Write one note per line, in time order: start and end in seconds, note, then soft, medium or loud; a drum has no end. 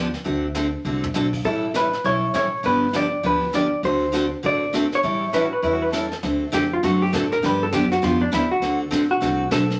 0.00 0.13 D2 medium
0.14 snare soft
0.24 0.73 D2 medium
0.24 0.45 D3 medium
0.24 0.45 A3 medium
0.24 0.45 C4 medium
0.24 0.45 F#4 medium
0.24 0.45 A4 medium
0.24 brush sweep soft
0.55 0.66 D3 medium
0.55 0.66 A3 medium
0.55 0.66 C4 medium
0.55 0.67 F#4 medium
0.55 0.67 A4 medium
0.55 snare medium
0.55 hi-hat pedal medium
0.85 1.10 C2 medium
0.85 1.05 D3 medium
0.85 1.05 A3 medium
0.85 1.05 C4 medium
0.85 1.05 F#4 medium
0.85 1.06 A4 medium
1.04 floor tom medium
1.14 1.40 B1 medium
1.14 1.26 D3 medium
1.14 1.26 A3 medium
1.14 1.26 C4 medium
1.14 1.26 F#4 medium
1.14 1.27 A4 medium
1.14 snare medium
1.14 hi-hat pedal medium
1.33 kick medium
1.33 crash medium
1.44 1.92 A1 medium
1.44 1.65 E3 medium
1.44 1.65 G3 medium
1.44 1.65 C#4 medium
1.44 1.65 E4 medium
1.44 1.76 A4 medium
1.44 1.66 A4 medium
1.44 brush sweep soft
1.74 1.86 E3 medium
1.74 1.86 G3 medium
1.74 1.86 C#4 medium
1.74 1.86 E4 medium
1.74 1.86 A4 medium
1.74 2.06 B4 medium
1.74 snare medium
1.74 hi-hat pedal medium
1.93 snare soft
2.04 2.30 B1 medium
2.04 2.25 E3 medium
2.04 2.25 G3 medium
2.04 2.25 C#4 medium
2.04 2.25 E4 medium
2.04 2.25 A4 medium
2.04 2.35 C#5 loud
2.04 brush sweep medium
2.34 2.60 A1 medium
2.34 2.45 E3 medium
2.34 2.46 G3 medium
2.34 2.46 C#4 medium
2.34 2.46 E4 medium
2.34 2.46 A4 medium
2.34 2.66 C#5 medium
2.34 snare medium
2.34 hi-hat pedal medium
2.63 3.12 G1 medium
2.63 2.84 D3 medium
2.63 2.84 F3 medium
2.63 2.84 B3 medium
2.63 2.84 D4 medium
2.63 2.85 G4 medium
2.63 2.96 B4 loud
2.63 brush sweep medium
2.93 3.05 D3 medium
2.93 3.05 F3 medium
2.93 3.05 B3 medium
2.93 3.05 D4 medium
2.93 3.06 G4 medium
2.93 3.26 D5 loud
2.93 snare medium
2.93 hi-hat pedal medium
3.23 3.72 D2 medium
3.23 3.44 D3 medium
3.23 3.44 F3 medium
3.23 3.44 B3 medium
3.23 3.44 D4 medium
3.23 3.44 G4 medium
3.23 3.53 B4 medium
3.23 brush sweep soft
3.53 3.65 D3 medium
3.53 3.65 F3 medium
3.53 3.65 B3 medium
3.53 3.65 D4 medium
3.53 3.66 G4 medium
3.53 3.85 D5 medium
3.53 snare medium
3.53 hi-hat pedal medium
3.83 4.31 D2 medium
3.83 4.04 D3 medium
3.83 4.04 A3 medium
3.83 4.04 C4 medium
3.83 4.05 F#4 medium
3.83 4.05 A4 medium
3.83 4.30 C5 medium
3.83 brush sweep medium
4.12 4.24 D3 medium
4.12 4.25 A3 medium
4.12 4.25 C4 medium
4.12 4.25 F#4 medium
4.12 4.25 A4 medium
4.12 snare medium
4.12 hi-hat pedal medium
4.43 4.92 A1 medium
4.43 4.63 D3 medium
4.43 4.64 A3 medium
4.43 4.64 C4 medium
4.43 4.64 F#4 medium
4.43 4.64 A4 medium
4.43 4.73 D5 loud
4.43 brush sweep soft
4.73 4.84 D3 medium
4.73 4.85 A3 medium
4.73 4.85 C4 medium
4.73 4.85 F#4 medium
4.73 4.86 A4 medium
4.73 snare medium
4.73 hi-hat pedal medium
4.92 5.91 C#5 medium
4.92 snare soft
5.03 5.51 A1 medium
5.03 5.24 E3 medium
5.03 5.24 G3 medium
5.03 5.24 C#4 medium
5.03 5.24 E4 medium
5.03 5.24 A4 medium
5.03 brush sweep soft
5.33 5.45 E3 medium
5.33 5.45 G3 medium
5.33 5.45 C#4 medium
5.33 5.45 E4 medium
5.33 5.45 A4 medium
5.33 5.43 B4 medium
5.33 snare medium
5.33 hi-hat pedal medium
5.43 5.53 F#4 medium
5.53 5.62 B4 medium
5.62 6.11 E2 medium
5.62 5.83 E3 medium
5.62 5.83 G3 medium
5.62 5.84 C#4 medium
5.62 5.84 E4 medium
5.62 5.84 A4 medium
5.62 5.73 B4 medium
5.62 brush sweep soft
5.73 5.83 F#4 medium
5.82 5.92 B4 medium
5.92 6.04 E3 medium
5.92 6.04 G3 medium
5.92 6.05 C#4 medium
5.92 6.05 E4 medium
5.92 6.16 A4 medium
5.92 6.05 A4 medium
5.92 snare medium
5.92 hi-hat pedal medium
6.12 snare soft
6.23 6.52 D2 medium
6.23 6.43 D3 medium
6.23 6.44 A3 medium
6.23 6.44 C4 medium
6.23 6.44 F#4 medium
6.23 6.44 A4 medium
6.23 brush sweep soft
6.23 snare soft
6.52 6.82 F2 medium
6.52 6.64 D3 medium
6.52 6.64 A3 medium
6.52 6.64 C4 medium
6.52 6.64 F#4 medium
6.52 6.72 G4 medium
6.52 6.64 A4 medium
6.52 snare medium
6.52 hi-hat pedal medium
6.73 6.83 F4 medium
6.83 7.12 F#2 medium
6.83 7.03 D3 medium
6.83 7.03 A3 medium
6.83 7.03 C4 medium
6.83 7.03 F#4 medium
6.83 7.02 F#4 medium
6.83 7.04 A4 medium
6.83 brush sweep soft
6.83 snare soft
7.02 7.13 G4 medium
7.13 7.42 A2 medium
7.13 7.24 D3 medium
7.13 7.24 A3 medium
7.13 7.24 C4 medium
7.13 7.24 F#4 medium
7.13 7.25 A4 medium
7.13 7.32 A4 medium
7.13 snare medium
7.13 hi-hat pedal medium
7.32 7.43 A#4 medium
7.32 snare soft
7.42 7.72 G2 medium
7.42 7.63 D3 medium
7.42 7.63 F3 medium
7.42 7.63 B3 medium
7.42 7.63 D4 medium
7.42 7.63 G4 medium
7.42 7.62 B4 medium
7.42 brush sweep soft
7.42 snare soft
7.63 7.73 A4 medium
7.72 8.02 F#2 medium
7.72 7.84 D3 medium
7.72 7.84 F3 medium
7.72 7.84 B3 medium
7.72 7.85 D4 medium
7.72 7.91 G4 medium
7.72 7.85 G4 medium
7.72 snare medium
7.72 hi-hat pedal medium
7.91 8.02 F#4 medium
7.91 snare soft
8.02 8.32 F2 medium
8.02 8.22 D3 medium
8.02 8.22 F3 medium
8.02 8.23 B3 medium
8.02 8.23 D4 medium
8.02 8.21 F4 medium
8.02 8.23 G4 medium
8.02 brush sweep medium
8.02 snare soft
8.22 8.32 D4 medium
8.32 8.62 D#2 medium
8.32 8.43 D3 medium
8.32 8.43 F3 medium
8.32 8.43 B3 medium
8.32 8.44 D4 medium
8.32 8.51 E4 medium
8.32 8.44 G4 medium
8.32 snare medium
8.32 hi-hat pedal medium
8.51 8.79 F#4 medium
8.62 8.91 D2 medium
8.62 8.82 D3 medium
8.62 8.82 A3 medium
8.62 8.82 C4 medium
8.62 8.83 F#4 medium
8.62 8.83 A4 medium
8.62 brush sweep soft
8.62 snare soft
8.91 9.21 A1 medium
8.91 9.02 D3 medium
8.91 9.02 A3 medium
8.91 9.03 C4 medium
8.91 9.03 F#4 medium
8.91 9.03 A4 medium
8.91 snare medium
8.91 hi-hat pedal medium
9.11 9.49 F#4 medium
9.21 9.50 C2 medium
9.21 9.41 D3 medium
9.21 9.42 A3 medium
9.21 9.42 C4 medium
9.21 9.42 F#4 medium
9.21 9.42 A4 medium
9.21 brush sweep soft
9.21 snare soft
9.51 9.80 B1 medium
9.51 9.62 D3 medium
9.51 9.63 A3 medium
9.51 9.63 C4 medium
9.51 9.63 F#4 medium
9.51 9.80 A4 medium
9.51 9.63 A4 medium
9.51 snare medium
9.51 hi-hat pedal medium
9.70 snare soft